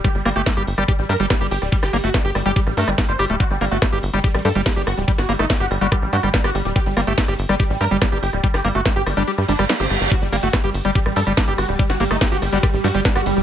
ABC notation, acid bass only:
X:1
M:4/4
L:1/16
Q:1/4=143
K:Cdor
V:1 name="Acid bass"
G, z B, A, A, G z G, G z G, G, G, G z2 | G, z B, A, A, G z G, G z A, G, A, G, G A, | G, z B, A, A, G z G, G z G, G, G, G z2 | G, z B, A, A, G z G, G z G, G, G, G z2 |
G, z B, A, A, G z G, G z G, G, G, G z2 | G, z B, A, A, G z G, G z G, G, G, G z2 | G, z B, A, A, G z G, G z G, G, D G z2 | G, z B, A, A, G z G, G z G, G, D G z2 |]